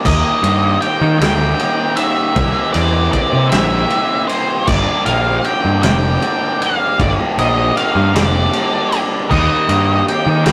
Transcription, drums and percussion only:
0.05 kick loud
0.05 crash loud
0.44 ride medium
0.82 ride medium
1.21 snare loud
1.21 ride loud
1.59 ride medium
1.97 ride medium
2.36 kick loud
2.36 ride loud
2.74 ride medium
3.13 kick medium
3.13 ride medium
3.52 snare loud
3.52 ride loud
3.90 ride medium
4.29 ride medium
4.67 kick loud
4.67 crash loud
5.06 ride medium
5.44 ride medium
5.83 snare loud
5.83 ride loud
6.22 ride medium
6.62 ride medium
6.99 kick loud
6.99 ride medium
7.38 ride medium
7.77 ride medium
8.15 snare loud
8.15 ride loud
8.53 ride medium
8.92 ride medium
9.31 kick loud
9.31 crash medium
9.69 ride medium
10.08 ride medium
10.46 snare loud
10.46 ride loud

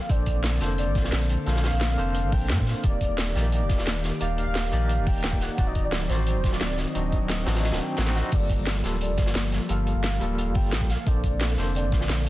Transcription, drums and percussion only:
0.09 kick loud
0.09 closed hi-hat medium
0.09 closed hi-hat loud
0.26 kick medium
0.26 closed hi-hat medium
0.26 closed hi-hat loud
0.44 snare loud
0.44 closed hi-hat medium
0.53 closed hi-hat soft
0.61 snare soft
0.61 closed hi-hat medium
0.78 closed hi-hat medium
0.95 kick loud
0.95 snare soft
0.95 closed hi-hat loud
0.95 closed hi-hat medium
1.04 snare medium
1.12 snare loud
1.12 closed hi-hat medium
1.21 closed hi-hat soft
1.29 closed hi-hat loud
1.29 closed hi-hat medium
1.47 snare soft
1.47 closed hi-hat medium
1.56 snare medium
1.64 snare loud
1.64 closed hi-hat loud
1.64 closed hi-hat medium
1.72 closed hi-hat soft
1.81 snare loud
1.81 closed hi-hat medium
1.98 closed hi-hat medium
1.98 open hi-hat medium
2.15 closed hi-hat loud
2.15 closed hi-hat medium
2.32 kick loud
2.32 closed hi-hat loud
2.32 open hi-hat medium
2.49 snare loud
2.49 closed hi-hat medium
2.58 kick medium
2.67 snare soft
2.67 closed hi-hat medium
2.84 kick loud
2.84 closed hi-hat medium
3.01 kick medium
3.01 closed hi-hat medium
3.18 snare loud
3.18 closed hi-hat medium
3.27 closed hi-hat soft
3.35 snare soft
3.35 closed hi-hat medium
3.52 closed hi-hat medium
3.69 kick loud
3.69 snare soft
3.69 closed hi-hat medium
3.78 snare medium
3.86 snare loud
3.86 closed hi-hat medium
3.95 closed hi-hat soft
4.04 snare soft
4.04 closed hi-hat medium
4.21 closed hi-hat loud
4.21 closed hi-hat medium
4.38 closed hi-hat medium
4.55 snare loud
4.55 closed hi-hat medium
4.72 closed hi-hat medium
4.72 open hi-hat medium
4.89 closed hi-hat medium
5.07 kick loud
5.07 closed hi-hat medium
5.07 open hi-hat medium
5.24 snare loud
5.24 closed hi-hat medium
5.33 kick medium
5.41 snare soft
5.41 closed hi-hat medium
5.58 kick loud
5.58 closed hi-hat medium
5.58 closed hi-hat loud
5.75 kick medium
5.75 closed hi-hat loud
5.75 closed hi-hat medium
5.92 snare loud
5.92 closed hi-hat medium
6.01 closed hi-hat soft
6.10 snare soft
6.10 closed hi-hat medium
6.27 closed hi-hat medium
6.44 kick loud
6.44 snare soft
6.44 closed hi-hat medium
6.53 snare medium
6.61 snare loud
6.61 closed hi-hat medium
6.61 closed hi-hat loud
6.70 closed hi-hat soft
6.78 snare soft
6.78 closed hi-hat medium
6.95 closed hi-hat medium
7.12 kick medium
7.12 closed hi-hat loud
7.12 closed hi-hat medium
7.29 snare loud
7.29 closed hi-hat loud
7.29 closed hi-hat medium
7.46 snare loud
7.46 closed hi-hat medium
7.46 open hi-hat medium
7.55 snare loud
7.55 closed hi-hat medium
7.64 snare loud
7.64 closed hi-hat medium
7.72 snare loud
7.72 closed hi-hat medium
7.81 closed hi-hat loud
7.97 snare medium
7.97 snare loud
7.97 closed hi-hat medium
8.07 snare medium
8.15 snare soft
8.15 closed hi-hat medium
8.15 closed hi-hat loud
8.32 kick loud
8.32 closed hi-hat medium
8.32 crash medium
8.49 kick medium
8.49 closed hi-hat medium
8.67 snare loud
8.67 closed hi-hat medium
8.75 closed hi-hat soft
8.84 snare soft
8.84 closed hi-hat medium
9.01 closed hi-hat medium
9.18 kick loud
9.18 snare soft
9.18 closed hi-hat medium
9.18 closed hi-hat loud
9.26 snare medium
9.35 snare loud
9.35 closed hi-hat medium
9.44 closed hi-hat soft
9.52 snare soft
9.52 closed hi-hat medium
9.52 closed hi-hat loud
9.69 closed hi-hat loud
9.69 closed hi-hat medium
9.87 closed hi-hat loud
9.87 closed hi-hat medium
10.04 snare loud
10.04 closed hi-hat medium
10.21 closed hi-hat medium
10.21 open hi-hat medium
10.38 closed hi-hat medium
10.55 kick loud
10.55 closed hi-hat loud
10.55 open hi-hat medium
10.72 snare loud
10.72 closed hi-hat medium
10.81 kick medium
10.90 snare soft
10.90 closed hi-hat loud
10.90 closed hi-hat medium
11.07 kick loud
11.07 closed hi-hat medium
11.24 kick medium
11.24 closed hi-hat loud
11.24 closed hi-hat medium
11.41 snare loud
11.41 closed hi-hat medium
11.49 closed hi-hat soft
11.58 snare soft
11.58 closed hi-hat medium
11.58 closed hi-hat loud
11.75 closed hi-hat medium
11.92 kick loud
11.92 snare soft
11.92 closed hi-hat loud
11.92 closed hi-hat medium
12.01 snare medium
12.09 snare loud
12.09 closed hi-hat medium
12.18 closed hi-hat soft

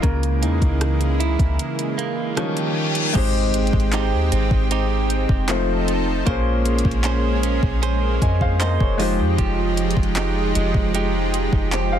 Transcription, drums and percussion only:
0.03 kick loud
0.03 closed hi-hat medium
0.23 closed hi-hat soft
0.43 closed hi-hat medium
0.62 kick medium
0.62 closed hi-hat medium
0.81 cross-stick loud
0.81 closed hi-hat medium
1.01 closed hi-hat soft
1.20 closed hi-hat medium
1.39 kick medium
1.39 closed hi-hat soft
1.59 closed hi-hat medium
1.79 closed hi-hat medium
1.99 closed hi-hat medium
2.37 cross-stick loud
2.37 closed hi-hat medium
2.57 closed hi-hat soft
2.95 closed hi-hat medium
3.15 kick loud
3.15 closed hi-hat medium
3.15 crash loud
3.54 closed hi-hat medium
3.67 closed hi-hat medium
3.73 kick medium
3.80 closed hi-hat soft
3.93 clap loud
3.93 closed hi-hat medium
4.32 closed hi-hat medium
4.51 kick loud
4.71 closed hi-hat medium
5.10 closed hi-hat medium
5.29 kick medium
5.49 clap loud
5.49 closed hi-hat medium
5.88 closed hi-hat medium
6.27 kick loud
6.27 closed hi-hat medium
6.66 closed hi-hat medium
6.79 closed hi-hat medium
6.85 kick medium
6.91 closed hi-hat soft
7.04 clap loud
7.04 closed hi-hat medium
7.43 closed hi-hat medium
7.63 kick loud
7.83 closed hi-hat medium
8.22 kick loud
8.22 closed hi-hat medium
8.41 kick medium
8.60 clap loud
8.60 closed hi-hat medium
8.80 kick loud
9.00 open hi-hat medium
9.38 kick loud
9.38 closed hi-hat medium
9.77 closed hi-hat medium
9.91 closed hi-hat medium
9.97 kick medium
10.03 closed hi-hat soft
10.16 clap loud
10.16 closed hi-hat medium
10.55 closed hi-hat medium
10.74 kick loud
10.95 closed hi-hat medium
11.34 closed hi-hat medium
11.53 kick medium
11.72 clap loud
11.72 closed hi-hat medium

